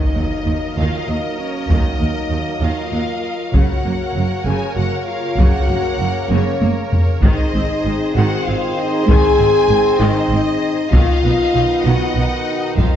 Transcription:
Already playing: D#3 F#3 A#3 D#4 A#4 D#5, impact
0.15 D#2 F#3
0.46 D#2 D#3
0.77 D#2 D#3 F4 F5
1.07 D#2 F#3 D#4 D#5
1.39 C#4 C#5
1.68 D#2 D#3 D#4 D#5, taiko
2.00 D#2 F#3
2.29 D#2 D#3
2.60 D#2 D#3 F4 F5
2.92 D#2 F#3
3.53 F#1 F#2 C#3 A#3 F#4 A#4 C#5 F#5, taiko
3.84 F#1 F#2 A#3
4.14 F#1 F#2 F#3
4.45 F#1 F#2 C#3 G#4 G#5
4.75 F#1 F#2 A#3 F#4 F#5
5.06 F4 F5
5.37 F#1 F#2 C#3 F#4 F#5, taiko
5.68 F#1 F#2 A#3
5.99 F#1 F#2 F#3
6.30 F#1 F#2 C#3 C#4 C#5, taiko high
6.61 F#1 F#2 A#3, taiko high
6.92 taiko low
7.22 G#1 G#2 D#3 C4 D#4 G#4 C5 D#5, taiko
7.54 G#1 G#2 C4
7.85 G#1 G#2 G#3
8.15 G#1 G#2 D#3 F#4 F#5
8.46 G#1 G#2 C4 F4 F5
8.78 D#4 D#5
9.06 G#1 G#2 D#3 G#4 G#5, taiko
9.39 G#1 G#2 C4
9.70 G#1 G#2 G#3
10.00 G#1 G#2 D#3 D#4 D#5
10.30 G#1 G#2 C4
10.92 B1 B2 D#3 B3 D#4 F4 D#5 F5, taiko
11.23 B1 B2 B3
11.54 B1 B2 F#3
11.84 B1 B2 D#3 F#4 F#5
12.14 B1 B2 B3
12.76 F1 F2 D#3 A3 F4 C5 F5, taiko

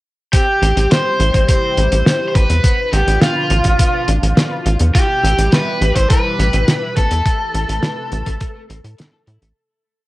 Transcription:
0.33 C3 E3 G3 C4 E4 G4, kick, closed hi-hat
0.62 A1 C4, closed hi-hat
0.76 A1 C4, closed hi-hat
0.91 G4 C5, snare, closed hi-hat
1.05 C5
1.20 A1, closed hi-hat
1.34 A1 C4, kick, closed hi-hat
1.49 C4 C5, kick, closed hi-hat
1.63 C4
1.77 A1 E4, closed hi-hat
1.92 A1, closed hi-hat
2.06 G4, snare, closed hi-hat
2.21 C5
2.28 C5
2.35 A1 G4 B4, kick, closed hi-hat
2.50 E2 C4, closed hi-hat
2.64 B2 D3 F3 B3 D4 F4, kick, closed hi-hat
2.93 A1 B3 G4, closed hi-hat
3.07 A1 B3, closed hi-hat
3.22 F4, snare, closed hi-hat
3.36 B4
3.50 A1, closed hi-hat
3.64 A1 B3, kick, closed hi-hat
3.79 B3, kick, closed hi-hat
3.94 B3
4.08 A1 D4, closed hi-hat
4.23 A1, closed hi-hat
4.37 F4, snare, closed hi-hat
4.51 B4
4.66 A1 F4, closed hi-hat
4.79 E2 B3, closed hi-hat
4.95 E3 G3 E4 G4, kick, closed hi-hat
5.24 A1 E3, closed hi-hat
5.38 A1 E3, closed hi-hat
5.52 B3 B4, snare, closed hi-hat
5.67 E4
5.81 A1, closed hi-hat
5.96 A1 E3 C5, kick, closed hi-hat
6.10 E3 B4, kick, closed hi-hat
6.25 E3
6.39 A1 G3, closed hi-hat
6.53 A1, closed hi-hat
6.68 B3, snare, closed hi-hat
6.82 E4
6.97 A1 B3 A4, kick, closed hi-hat
7.11 E2 E3, closed hi-hat
7.26 C3 A3 B4, kick, closed hi-hat
7.54 A1 A3, closed hi-hat
7.69 A1 A3, closed hi-hat
7.83 E4, snare, closed hi-hat
7.98 A4
8.12 A1, closed hi-hat
8.26 A1 A3, kick, closed hi-hat
8.41 A3, kick, closed hi-hat
8.55 A3
8.70 A1 C4, closed hi-hat
8.84 A2, closed hi-hat
8.98 E4, snare, closed hi-hat
9.13 A4
9.27 A2 E4, closed hi-hat
9.42 A1 A3, closed hi-hat

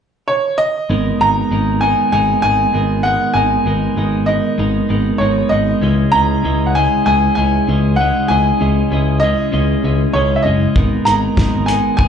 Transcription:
0.28 C#5
0.58 D#5
0.90 G#1 G#3 B3 D#4 A#4
1.20 G#1 G#3 B3 D#4 A#4 A#5
1.51 G#1 G#3 B3 D#4 A#4
1.81 G#3 B3 D#4 A#4 G#5
2.12 G#1 G#3 B3 D#4 A#4 G#5
2.42 G#1 G#3 B3 D#4 A#4 G#5
2.73 G#1 G#3 B3 D#4 A#4
3.03 G#3 B3 D#4 A#4 F#5
3.34 G#1 G#3 B3 D#4 A#4 G#5
3.65 G#1 G#3 B3 D#4 A#4
3.96 G#1 G#3 B3 D#4 A#4
4.26 G#3 B3 D#4 A#4 D#5
4.58 G#1 G#3 B3 D#4 A#4
4.89 G#1 G#3 B3 D#4 A#4
5.18 G#1 G#3 B3 D#4 A#4 C#5
5.49 G#1 G#3 B3 D#4 A#4 D#5
5.81 C#2 C#3 G#3 C#4 E4 G#4 D#5
6.12 C#2 C#3 G#3 C#4 E4 G#4 D#5 A#5
6.43 C#2 C#3 G#3 C#4 E4 G#4 D#5
6.66 F#5
6.74 C#3 G#3 C#4 E4 G#4 D#5 G#5
7.05 C#2 C#3 G#3 C#4 E4 G#4 D#5 G#5
7.35 C#2 C#3 G#3 C#4 E4 G#4 D#5 G#5
7.67 C#2 C#3 G#3 C#4 E4 G#4 D#5
7.96 C#3 G#3 C#4 E4 F#5
8.01 G#4 D#5
8.28 C#2 C#3 G#3 C#4 E4 G#4 D#5 G#5
8.59 C#2 C#3 G#3 C#4 E4 G#4 D#5
8.90 C#2 C#3 G#3 C#4 E4 G#4 D#5
9.20 C#3 G#3 C#4 E4 D#5
9.24 G#4 D#5
9.51 C#2 C#3 G#3 C#4 E4 G#4 D#5
9.83 C#2 C#3 G#3 C#4 E4 G#4 D#5
10.12 C#2 C#3 G#3 C#4 E4 G#4 C#5 D#5
10.36 E5
10.42 F#1 C#3 G#3 C#4 E4 G#4 D#5
10.47 D#5
10.76 G#1 G#3 B3 D#4 A#4, kick
11.05 G#1 G#3 B3 D#4 A#4 A#5, closed hi-hat
11.37 G#1 G#3 B3 D#4 A#4, kick, snare
11.66 G#3 B3 D#4 A#4 G#5, closed hi-hat
11.97 G#1 G#3 B3 D#4 A#4 G#5, kick

